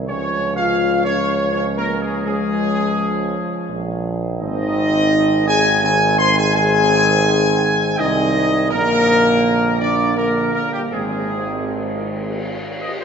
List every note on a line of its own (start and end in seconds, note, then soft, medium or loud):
0.08 3.42 C#2 medium
0.08 1.49 F3 medium
0.08 0.53 C#4 medium
0.08 1.49 C#4 medium
0.08 0.54 C#5 loud
0.56 1.01 F4 medium
0.56 1.01 F5 loud
1.05 1.50 C#4 medium
1.05 1.50 C#5 loud
1.53 2.22 F3 medium
1.53 1.64 C#4 medium
1.53 2.22 C#4 medium
1.53 1.64 C#5 medium
1.76 1.99 A#3 medium
1.76 2.00 A#4 medium
2.01 2.24 G#3 medium
2.01 2.25 G#4 medium
2.25 4.24 F3 medium
2.25 4.01 G#3 loud
2.25 4.24 C#4 medium
2.25 4.02 G#4 loud
3.69 4.43 A#1 medium
4.40 8.00 G#1 loud
4.40 5.80 D#3 medium
4.40 5.80 C4 medium
4.40 5.44 D#4 loud
4.40 5.44 D#5 loud
5.48 5.81 G#4 loud
5.48 5.82 G#5 loud
5.83 6.52 D#3 medium
5.83 6.52 C4 medium
5.83 6.17 G#4 medium
5.83 6.17 G#5 loud
6.19 6.28 C5 medium
6.19 6.36 C6 loud
6.37 6.54 G#4 loud
6.37 6.54 G#5 loud
6.55 7.96 D#3 medium
6.55 7.96 C4 medium
6.55 7.95 G#4 loud
6.55 7.96 G#5 loud
7.98 8.73 C2 medium
7.98 8.68 D#3 medium
7.98 8.68 C4 medium
7.98 8.68 D#4 loud
7.98 8.71 D#5 loud
8.71 10.63 A#1 medium
8.71 10.16 D3 medium
8.71 10.16 A#3 loud
8.71 9.77 A#3 loud
8.71 9.76 A#4 loud
9.80 10.15 D4 medium
9.80 10.15 D5 loud
10.17 10.88 D3 medium
10.17 10.88 A#3 medium
10.17 10.52 A#3 medium
10.17 10.51 A#4 medium
10.54 10.72 A#3 medium
10.54 10.71 A#4 medium
10.73 10.92 G3 medium
10.73 10.81 G4 medium
10.91 12.83 G#1 medium
10.91 12.87 D#3 medium
10.91 12.40 G#3 medium
10.91 12.87 C4 medium
10.91 12.40 G#4 medium
12.82 12.91 D#5 medium
13.01 13.04 C5 medium